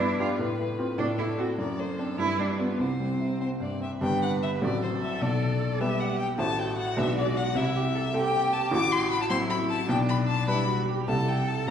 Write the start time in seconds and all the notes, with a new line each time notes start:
Already playing: G2 B4
0.00 B3 E4
0.20 D4 F4 G4
0.39 A2
0.58 A3
0.79 C4 F4
0.98 A2 D4 A4
1.18 A3 E4
1.38 C4 F#4
1.58 F#2 D5
1.79 A3 C5
1.99 C4 D4 A4
2.18 G2 E4 B4
2.39 G3 D4
2.59 B3 F4
2.79 C2 C4 C5
3.00 G3
3.20 E4
3.41 C4 C5
3.60 G2 D5
3.81 C4 E5
4.01 G1 G2 G3 B3 D4 B4 G5
4.23 F#5
4.43 E5
4.62 A1 A2 F#3 C4 F#4 A4 D5
4.83 C5
5.02 E5
5.21 B1 B2 D5
5.80 G3 B3 G4 B4 E5
6.00 F#5
6.19 G5
6.38 A1 A2 A3 E4 F#4 C5 A5
6.59 G5
6.78 F#5
6.96 B1 B2 G#3 D4 B4 E5
7.17 D5
7.37 F#5
7.55 C2 C3 E4 E5
7.75 G4
7.95 A4
8.13 A3 C4 G4 A4 G5
8.53 A5
8.71 A1 A2 F#4 D6
8.91 C6
9.10 B5
9.22 A5
9.30 F#3 C4 E4 C5 C6
9.50 B5
9.70 A5
9.89 B1 B2 D4 G5
10.09 B5
10.28 A5
10.47 G3 D4 E4 B4 B5
10.68 F#4
10.88 G4
11.07 C2 C3 G3 E4 A4 A5
11.28 G5
11.47 A5